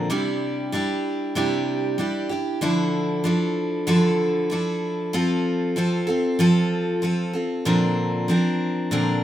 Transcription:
Already playing: C4 D4 A#4
0.10 C3 G3 D4 E4 G4
0.72 G3 D4 E4 G4
1.35 C3 G3 D4 E4 G4
1.98 G3 D4 E4 G4
2.29 D4 E4 G4
2.61 D3 F3 D4 E4 A4
3.24 F3 D4 E4 A4
3.87 D3 F3 D4 E4 A4
4.50 F3 D4 E4 A4
5.13 F3 C4 F4 A4
5.76 F3 C4 F4 A4
6.07 C4 F4 A4
6.39 F3 C4 F4 A4
7.02 F3 C4 F4 A4
7.33 C4 F4 A4
7.65 A#2 D3 F3 C4 D4 A#4
8.28 F3 C4 D4 A#4
8.91 A#2 D3 F3 C4 D4 A#4

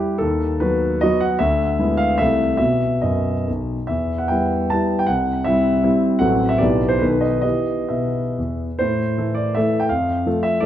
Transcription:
Already playing: G3 E4 G4
0.18 D#2 A4
0.60 F#3 B3 F#4 B4
1.01 F#3 B3 F#4 D#5
1.20 F#5
1.39 D2 E5
1.79 G#3 B3 E4
1.97 F5
2.18 C2 E3 A3 A4 E5
2.57 B2 B3 F#4 E5
3.01 F#2 D#5
3.48 B1
3.87 E2 E5
4.18 F#5
4.28 G3 B3 E4 G5
4.70 G3 B3 E4 A5
4.99 G5
5.07 C2 F#5
5.44 G3 C4 E4 E5
5.84 G3 C4 E4
6.19 A1 F#3 C4 A4 F#5
6.49 E5
6.58 B1 E3 B3 G4 D5
6.88 C5
6.99 B1 D#3 B3 A4 B4
7.21 D#5
7.41 E3 B3 G4 D#5
7.89 B2 E5
8.38 E2
8.79 A2 C5
9.17 E3 A3 A4
9.35 D5
9.55 E3 A3 A4 E5
9.80 G5
9.89 F2 F5
10.26 F3 A3 A4
10.43 E5
10.60 F3 A3 D5

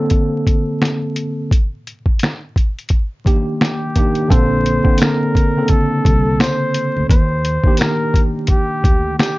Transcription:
Already playing: D3 A#3 C4 A4
0.10 kick, closed hi-hat
0.47 kick, closed hi-hat
0.82 finger snap, snare, closed hi-hat
1.16 closed hi-hat
1.51 kick, closed hi-hat
1.87 closed hi-hat
2.06 kick
2.19 snare, closed hi-hat
2.24 finger snap
2.56 kick, closed hi-hat
2.79 closed hi-hat
2.89 kick, closed hi-hat
3.25 D#3 A#3 D4 G4, kick, closed hi-hat
3.61 G4, finger snap, snare, closed hi-hat
3.96 D#3 A#3 D4 G4, kick, closed hi-hat
4.15 closed hi-hat
4.28 A#1 D3 A#3 C4 A4 C5, kick, closed hi-hat
4.66 closed hi-hat
4.83 D3 A#3 C4 D4, kick
4.98 A#4, snare, closed hi-hat, tambourine
5.03 finger snap
5.35 kick, closed hi-hat
5.56 C#3 A#3 C4 A4
5.62 D3
5.68 A4, kick, closed hi-hat
6.05 C2, kick, closed hi-hat
6.40 C5, finger snap, snare, closed hi-hat, tambourine
6.74 closed hi-hat
6.97 D2
7.09 D#2 C5, kick, closed hi-hat
7.45 closed hi-hat
7.64 D#3 A#3 D4 G4, kick
7.77 A#4, snare, closed hi-hat, tambourine
7.82 finger snap
8.14 kick, closed hi-hat
8.47 G4, kick, closed hi-hat
8.84 D2, kick, closed hi-hat
9.18 G4, finger snap, snare, tambourine
9.23 closed hi-hat

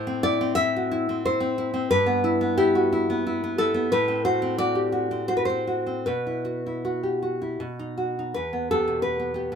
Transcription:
Already playing: A2 C5
0.07 C4
0.23 E4 D5
0.41 C4
0.55 E4 E5
0.76 F#4
0.91 E4
1.09 C4
1.25 E4 C5
1.40 C4
1.58 E4
1.74 C4
1.91 G2 B4
2.06 B3
2.24 E4
2.41 B3
2.57 E4 G4
2.75 F#4
2.92 E4
3.10 B3
3.27 E4
3.44 B3
3.58 E4 A4
3.74 B3
3.92 A2 B4
4.08 C4
4.25 F#4 C5
4.42 C4
4.58 F#4 D5
4.75 G4
4.92 F#4
5.11 C4
5.28 F#4 C5
5.37 B4
5.45 C5
5.49 C4
5.67 F#4
5.86 C4
6.06 B2 B4
6.27 E4
6.45 F#4
6.66 E4
6.85 F#4
7.03 G4
7.22 F#4
7.42 E4
7.60 B2
7.79 D#4
7.97 F#4
8.19 D#4
8.34 E2 B4
8.53 B3
8.71 B3 G4 A4
8.88 B2
9.02 B4
9.19 B3
9.34 B3 G4
9.52 B2

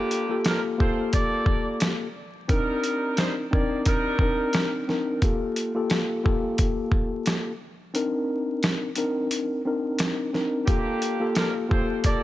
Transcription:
Already playing: D3 A#3 F4 G4 A4
0.11 closed hi-hat
0.29 A#3 F4 G4 A4
0.45 F3 D4 A#4, cross-stick, snare, closed hi-hat
0.78 A#3 C4 F4 G4 A4 C5, kick
1.13 A#3 A4 D5, kick, closed hi-hat
1.46 kick
1.80 cross-stick, snare, closed hi-hat
2.48 G3 C4 D4 D#4 A#4, kick, closed hi-hat
2.84 closed hi-hat
3.17 G3 D#4 C5, cross-stick, snare, closed hi-hat
3.51 A#3 C4 D4 D#4 G4 A#4 D5, kick
3.85 G3 D#4 A#4, kick, closed hi-hat
4.19 C4 D4 D#4 A#4, kick
4.53 cross-stick, snare, closed hi-hat
4.88 C4 D4 D#4 A#4, snare
5.22 A#3 F4 G4 A4, kick, closed hi-hat
5.56 closed hi-hat
5.74 A#3 F4 G4 A4
5.90 cross-stick, snare, closed hi-hat
6.23 A#3 F4 G4 A4, kick
6.58 kick, closed hi-hat
6.92 kick
7.26 cross-stick, snare, closed hi-hat
7.94 C4 D4 D#4 A#4, closed hi-hat
8.63 cross-stick, snare, closed hi-hat
8.95 C4 D4 D#4 A#4, closed hi-hat
9.31 closed hi-hat
9.65 C4 D4 D#4 A#4
9.99 cross-stick, snare, closed hi-hat
10.33 C4 D4 D#4 A#4, snare
10.66 D3 A#3 F4 G4 A4, kick, closed hi-hat
11.02 closed hi-hat
11.20 A#3 F4 G4 A4
11.35 F3 D4 A#4, cross-stick, snare, closed hi-hat
11.69 A#3 C4 F4 G4 A4 C5, kick
12.03 A#3 A4 D5, kick, closed hi-hat

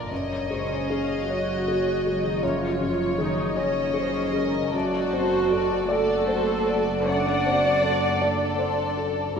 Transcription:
Already playing: D3 A#3 D4 F4 A#4 D5
0.10 F#1 F#2 C#5 D#5
0.49 C#3 G#3 C#4 C5 C#5
0.89 G#4 C#5 F5
1.28 F#3 F#4 C#5 D#5
1.68 G#4
2.06 G#3
2.23 D#3 D#4
2.41 F#2 F3 F4 C#5
2.81 C#3
3.18 D#3 D#4 G#4
3.55 C#3 C#4 C#5 D#5
3.94 G#4 C5 C#5
4.33 G#3 A#4 D#5
4.73 F#1 F#2 F#3 F#4 A4 D5
5.12 C4 C5
5.50 A4 D5
5.89 A3 F#4 A4 D5
6.28 C5
6.67 A4 D5
7.06 F#2 D4 D5 F#5
7.10 F#4
7.46 C4 C5
7.83 A4 D5
8.20 A4 D5
8.59 C5
8.97 A4
9.36 G1 G2 A#4

